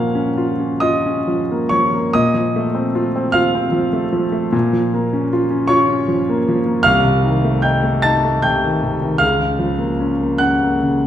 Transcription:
0.00 2.08 A#2 medium
0.00 1.28 F3 medium
0.00 1.51 A#3 medium
0.00 0.15 C#4 medium
0.00 0.38 F4 medium
0.00 0.77 F5 medium
0.00 2.15 F#5 medium
0.00 2.15 G#5 medium
0.00 0.80 F6 loud
0.00 2.15 F#6 medium
0.00 2.15 G#6 medium
0.15 0.50 C#4 medium
0.38 0.73 F4 medium
0.59 0.96 C#4 medium
0.80 1.18 F4 medium
0.80 1.66 D#5 medium
0.80 1.70 D#6 medium
1.06 1.41 C#4 medium
1.28 1.63 F3 medium
1.51 1.85 A#3 medium
1.69 2.05 F3 medium
1.69 2.09 C#5 medium
1.69 2.12 C#6 medium
1.94 2.13 A#3 medium
2.13 4.51 A#2 medium
2.13 3.31 D#5 medium
2.13 3.34 D#6 loud
2.34 2.66 F3 medium
2.56 2.87 A3 medium
2.75 3.06 C4 medium
2.95 3.27 F4 medium
3.16 3.47 C4 medium
3.32 3.66 F4 medium
3.32 5.28 F5 medium
3.32 5.32 F6 loud
3.55 3.86 C4 medium
3.72 4.05 F3 medium
3.93 4.25 A3 medium
4.13 4.45 F3 medium
4.32 4.53 A3 medium
4.52 6.81 A#2 medium
4.73 5.05 F3 medium
4.94 5.25 A#3 medium
5.13 5.44 C#4 medium
5.33 5.63 F4 medium
5.51 5.81 C#4 medium
5.68 6.01 F4 medium
5.68 6.80 C#5 medium
5.68 6.84 C#6 loud
5.89 6.20 C#4 medium
6.08 6.39 F3 medium
6.29 6.59 A#3 medium
6.48 6.78 F3 medium
6.66 6.85 A#3 medium
6.83 9.17 C2 medium
6.83 7.59 F5 medium
6.83 7.62 F6 loud
7.04 7.35 C3 medium
7.24 7.55 D#3 medium
7.45 7.76 A3 medium
7.62 7.96 D#4 medium
7.62 8.01 G5 medium
7.62 8.03 G6 medium
7.83 8.16 A3 medium
8.02 8.36 D#4 medium
8.02 8.40 A5 medium
8.02 8.43 A6 loud
8.25 8.56 A3 medium
8.42 8.75 C3 medium
8.42 9.16 G5 medium
8.42 9.20 G6 medium
8.64 8.94 D#3 medium
8.83 9.13 C3 medium
9.02 9.21 D#3 medium
9.18 11.07 C#2 medium
9.18 10.36 F5 medium
9.18 10.40 F6 loud
9.39 9.71 C#3 medium
9.59 9.91 F3 medium
9.79 10.11 A#3 medium
10.00 10.33 C#4 medium
10.21 10.54 A#3 soft
10.38 10.75 C#4 medium
10.38 11.07 F#5 medium
10.38 11.07 F#6 medium
10.63 10.97 A#3 soft
10.83 11.07 C#3 soft

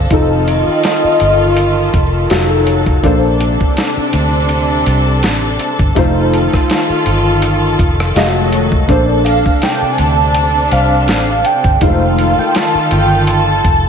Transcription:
0.00 0.11 D3 medium
0.00 0.11 A#3 soft
0.00 0.11 C4 soft
0.00 0.11 A4 medium
0.00 2.26 A4 medium
0.00 0.44 F5 medium
0.10 0.63 F1 loud
0.10 3.01 D#3 medium
0.10 2.26 F3 medium
0.10 2.26 C4 medium
0.10 2.27 D#4 medium
0.10 2.28 F4 medium
0.10 2.28 A4 medium
0.10 2.27 D#5 loud
0.10 kick loud
0.10 closed hi-hat medium
0.48 1.28 D#5 medium
0.48 closed hi-hat medium
0.68 1.47 G5 medium
0.68 muted fingered electric bass stroke soft
0.83 snare loud
0.83 closed hi-hat medium
1.04 muted fingered electric bass stroke soft
1.20 1.90 G1 loud
1.20 closed hi-hat medium
1.57 closed hi-hat medium
1.94 2.27 F1 medium
1.94 kick loud
1.94 closed hi-hat medium
2.30 3.00 F1 loud
2.30 3.03 F#3 medium
2.30 3.04 D#4 medium
2.30 3.04 F4 medium
2.30 11.78 A4 medium
2.30 3.03 A4 medium
2.30 snare loud
2.30 closed hi-hat medium
2.67 closed hi-hat medium
2.86 kick medium
2.86 closed hi-hat soft
3.02 3.56 A#1 loud
3.02 5.93 C3 medium
3.02 5.92 A#3 medium
3.02 5.92 D4 medium
3.02 5.93 D4 medium
3.02 5.93 A4 medium
3.02 5.93 C5 medium
3.02 kick loud
3.02 closed hi-hat medium
3.40 closed hi-hat medium
3.61 kick medium
3.77 snare loud
3.77 closed hi-hat medium
3.97 muted fingered electric bass stroke soft
4.13 4.83 D2 loud
4.13 closed hi-hat medium
4.49 closed hi-hat medium
4.86 5.23 C2 medium
4.86 closed hi-hat medium
5.23 5.57 A1 loud
5.23 snare loud
5.23 closed hi-hat medium
5.60 closed hi-hat medium
5.79 5.95 G1 medium
5.79 kick medium
5.79 closed hi-hat soft
5.95 6.49 F1 loud
5.95 8.86 D#3 medium
5.95 8.11 A3 medium
5.95 8.12 D#4 medium
5.95 8.14 F4 medium
5.95 8.12 F4 medium
5.95 8.13 C5 medium
5.95 kick loud
5.95 closed hi-hat medium
6.34 closed hi-hat medium
6.53 muted fingered electric bass stroke soft
6.53 kick medium
6.53 cross-stick medium
6.70 snare loud
6.70 closed hi-hat medium
6.89 muted fingered electric bass stroke soft
7.06 7.75 G1 medium
7.06 closed hi-hat medium
7.42 closed hi-hat medium
7.79 8.13 F1 medium
7.79 kick loud
7.79 closed hi-hat medium
8.00 cross-stick medium
8.15 8.85 F1 loud
8.15 8.88 F#3 medium
8.15 8.23 G#3 medium
8.15 8.89 F4 medium
8.15 8.89 F#4 medium
8.15 8.90 D#5 medium
8.15 snare loud
8.15 closed hi-hat medium
8.22 8.92 A3 medium
8.52 closed hi-hat medium
8.72 kick medium
8.87 9.41 A#1 loud
8.87 11.79 C3 medium
8.87 11.77 A#3 medium
8.87 11.77 D4 medium
8.87 11.79 D4 medium
8.87 11.78 A4 medium
8.87 11.78 C5 medium
8.87 kick loud
8.87 closed hi-hat medium
9.25 10.05 F5 medium
9.25 9.65 F5 loud
9.25 closed hi-hat medium
9.46 kick medium
9.62 9.94 G5 loud
9.62 snare loud
9.62 closed hi-hat medium
9.82 muted fingered electric bass stroke soft
9.92 10.01 G#5 medium
9.98 10.68 D2 loud
9.98 10.74 A5 loud
9.98 closed hi-hat medium
10.35 closed hi-hat medium
10.72 11.08 C2 loud
10.72 11.52 C5 medium
10.72 11.47 F5 loud
10.72 closed hi-hat medium
11.08 11.42 A1 loud
11.08 snare loud
11.08 closed hi-hat medium
11.45 11.84 G5 loud
11.45 closed hi-hat medium
11.64 11.80 G1 medium
11.64 kick medium
11.64 closed hi-hat soft
11.80 12.34 F1 loud
11.80 13.89 D#3 medium
11.80 11.88 G#3 medium
11.80 13.89 D#4 medium
11.80 13.89 F4 medium
11.80 13.89 A4 medium
11.80 13.89 C5 medium
11.80 12.40 F5 loud
11.80 kick loud
11.80 closed hi-hat medium
11.87 13.89 A3 medium
12.19 closed hi-hat medium
12.38 12.57 G5 medium
12.38 muted fingered electric bass stroke soft
12.55 12.92 A5 loud
12.55 snare loud
12.55 closed hi-hat medium
12.75 muted fingered electric bass stroke soft
12.91 13.61 G1 loud
12.91 13.30 G5 loud
12.91 closed hi-hat medium
13.27 13.89 A5 loud
13.27 closed hi-hat medium
13.65 13.89 F1 medium
13.65 kick loud
13.65 closed hi-hat medium

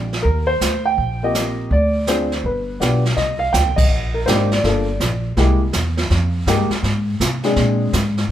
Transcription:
0.00 0.21 A#1 medium
0.13 snare soft
0.23 0.59 D#2 medium
0.23 0.48 A#4 medium
0.23 brush sweep soft
0.23 kick soft
0.47 0.82 C5 loud
0.61 0.95 D2 medium
0.61 snare medium
0.61 hi-hat pedal medium
0.85 1.23 G5 medium
0.98 1.67 A#1 medium
0.98 brush sweep soft
0.98 kick soft
1.23 1.69 A#3 medium
1.23 1.69 C4 soft
1.23 1.69 F4 medium
1.23 1.70 G4 medium
1.23 1.74 D#5 medium
1.35 snare medium
1.35 hi-hat pedal medium
1.71 2.40 D2 medium
1.71 2.06 D5 medium
1.71 brush sweep soft
1.71 kick soft
2.07 2.29 C4 medium
2.07 2.29 D4 medium
2.07 2.29 F4 medium
2.07 2.29 G#4 medium
2.07 2.46 C5 medium
2.07 snare medium
2.07 hi-hat pedal soft
2.32 snare soft
2.44 2.78 G1 medium
2.44 3.01 B4 medium
2.44 brush sweep soft
2.44 kick soft
2.80 3.15 B1 medium
2.80 3.02 B3 medium
2.80 3.02 D4 soft
2.80 3.02 F4 medium
2.80 3.02 G4 medium
2.80 snare medium
2.80 hi-hat pedal soft
3.05 snare soft
3.17 3.53 C2 medium
3.17 3.39 D#5 medium
3.17 brush sweep soft
3.17 kick soft
3.17 snare soft
3.39 3.53 F5 medium
3.53 3.66 D2 medium
3.53 3.78 G5 medium
3.53 kick soft
3.53 snare medium
3.53 hi-hat pedal medium
3.66 3.76 C2 medium
3.76 3.88 A#1 medium
3.76 4.11 D#5 medium
3.76 kick medium
3.76 crash medium
3.89 4.25 A#1 medium
3.89 brush sweep soft
4.14 4.27 A#4 medium
4.26 4.62 G#1 medium
4.26 4.48 A#3 medium
4.26 4.49 D4 medium
4.26 4.49 D#4 medium
4.26 4.49 G4 medium
4.26 4.49 C5 medium
4.26 kick soft
4.26 snare medium
4.26 hi-hat pedal medium
4.51 5.21 D5 medium
4.51 snare soft
4.64 4.99 G1 medium
4.64 4.86 A#3 medium
4.64 4.85 D4 medium
4.64 4.85 F4 medium
4.64 4.86 A4 medium
4.64 brush sweep soft
4.64 kick soft
4.64 snare soft
5.00 5.36 A#1 medium
5.00 kick soft
5.00 snare medium
5.00 hi-hat pedal soft
5.37 5.72 C2 medium
5.37 5.59 G#3 medium
5.37 5.59 A#3 medium
5.37 5.58 E4 medium
5.37 5.59 G4 medium
5.37 brush sweep soft
5.37 kick soft
5.37 snare soft
5.73 6.09 E2 medium
5.73 kick soft
5.73 snare medium
5.73 hi-hat pedal medium
5.97 snare soft
6.10 6.46 F2 medium
6.10 brush sweep medium
6.10 kick soft
6.10 snare soft
6.47 6.69 G2 medium
6.47 6.69 G#3 medium
6.47 6.69 A#3 medium
6.47 6.69 D#4 medium
6.47 6.69 G4 medium
6.47 kick soft
6.47 snare medium
6.47 hi-hat pedal medium
6.70 muted upright bass stroke soft
6.70 snare soft
6.83 7.19 G#2 medium
6.83 brush sweep soft
6.83 kick soft
6.83 snare soft
7.20 7.55 C3 medium
7.20 kick soft
7.20 snare medium
7.20 hi-hat pedal medium
7.43 7.91 G#3 medium
7.43 7.91 C4 medium
7.43 7.91 D4 medium
7.43 7.91 G#4 medium
7.43 snare soft
7.56 7.92 A#2 medium
7.56 brush sweep soft
7.56 kick soft
7.56 snare soft
7.93 8.29 G#2 medium
7.93 kick soft
7.93 snare medium
7.93 hi-hat pedal soft
8.18 snare soft

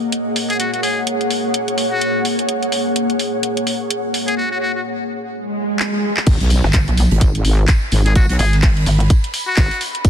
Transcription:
0.00 4.38 A#3 medium
0.00 4.38 G#4 medium
0.00 4.38 C#5 medium
0.00 0.27 D#5 medium
0.00 4.38 F#5 medium
0.12 closed hi-hat medium
0.36 open hi-hat loud
0.50 0.58 G#4 medium
0.50 closed hi-hat soft
0.60 0.69 F#4 medium
0.60 closed hi-hat medium
0.73 0.80 F#4 medium
0.73 closed hi-hat soft
0.83 1.01 G#4 medium
0.83 open hi-hat loud
1.07 closed hi-hat medium
1.21 closed hi-hat soft
1.30 open hi-hat loud
1.54 closed hi-hat medium
1.68 closed hi-hat medium
1.78 open hi-hat loud
1.92 2.25 F#4 medium
2.01 closed hi-hat medium
2.25 open hi-hat loud
2.39 closed hi-hat medium
2.49 closed hi-hat medium
2.63 closed hi-hat soft
2.72 open hi-hat medium
2.96 closed hi-hat medium
3.10 closed hi-hat soft
3.19 open hi-hat loud
3.43 closed hi-hat medium
3.57 closed hi-hat medium
3.67 open hi-hat medium
3.90 closed hi-hat medium
4.14 open hi-hat loud
4.28 4.36 G#4 medium
4.28 closed hi-hat medium
4.37 4.46 F#4 medium
4.51 4.58 F#4 medium
4.61 4.70 F#4 medium
4.75 4.81 F#4 medium
5.32 swell medium
5.79 clap loud
6.17 clap medium
6.27 6.38 G#1 loud
6.27 kick loud
6.27 closed hi-hat medium
6.27 crash loud
6.27 tambourine medium
6.27 impact medium
6.41 6.62 B1 loud
6.41 closed hi-hat soft
6.50 open hi-hat loud
6.50 tambourine medium
6.64 6.86 G#1 loud
6.64 snare soft
6.73 kick loud
6.73 snare loud
6.73 clap loud
6.73 closed hi-hat medium
6.73 tambourine loud
6.88 7.09 B1 loud
6.88 closed hi-hat soft
6.97 open hi-hat loud
6.97 tambourine medium
7.11 7.43 G#1 loud
7.11 closed hi-hat soft
7.21 kick loud
7.21 closed hi-hat medium
7.21 tambourine medium
7.35 closed hi-hat medium
7.45 7.67 G#1 loud
7.45 open hi-hat loud
7.45 tambourine medium
7.68 kick loud
7.68 snare loud
7.68 clap loud
7.68 closed hi-hat medium
7.68 tambourine loud
7.92 8.27 G#1 loud
7.92 open hi-hat loud
7.92 tambourine medium
8.06 8.14 G#4 medium
8.06 10.10 B5 medium
8.06 closed hi-hat medium
8.15 8.24 F#4 medium
8.15 kick loud
8.15 closed hi-hat medium
8.15 tambourine medium
8.29 8.38 B1 loud
8.29 8.36 F#4 medium
8.29 closed hi-hat soft
8.39 8.85 G#1 loud
8.39 8.57 G#4 medium
8.39 open hi-hat loud
8.39 tambourine medium
8.53 snare medium
8.53 closed hi-hat soft
8.62 kick loud
8.62 snare loud
8.62 clap loud
8.62 closed hi-hat medium
8.62 open hi-hat medium
8.77 closed hi-hat soft
8.86 9.09 G#1 loud
8.86 open hi-hat loud
8.86 tambourine medium
9.00 closed hi-hat soft
9.10 kick loud
9.10 closed hi-hat medium
9.10 tambourine medium
9.24 closed hi-hat medium
9.34 open hi-hat loud
9.34 tambourine medium
9.48 9.81 F#4 loud
9.57 9.69 G#1 loud
9.57 kick loud
9.57 snare loud
9.57 clap loud
9.57 closed hi-hat medium
9.57 tambourine loud
9.71 closed hi-hat soft
9.81 open hi-hat loud
9.81 tambourine medium
9.95 closed hi-hat medium
10.05 10.10 G#1 loud
10.05 kick loud
10.05 closed hi-hat medium
10.05 tambourine medium

